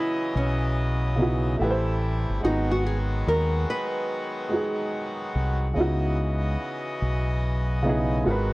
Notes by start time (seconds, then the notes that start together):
Already playing: C#3 E3 F#3 B3 E4 F#4 D#5
0.36 B1 C#4
1.16 C#3 B3 D#4
1.21 E4 F#4
1.57 A1 C3 G3 A3 E4
1.62 G4 B4
1.70 C5
2.29 G1
2.40 G#1 D#3 F#3 G#3 B3 D#4 F#4
2.45 B3 D#4 F#4
2.71 F#4
2.86 G#4
3.27 D#2 A#4
3.70 B4
4.49 G#3 D#4
4.53 F#4 G#4
5.36 C2
5.74 C#2 C#3 E3 B3 D#4 D#5
5.79 E4 F#4
7.02 B1
7.82 C#3 B3 D#4
7.87 E4 G#4
8.24 G#1 D#3 F#3 G#3 F#4
8.28 A#4 B4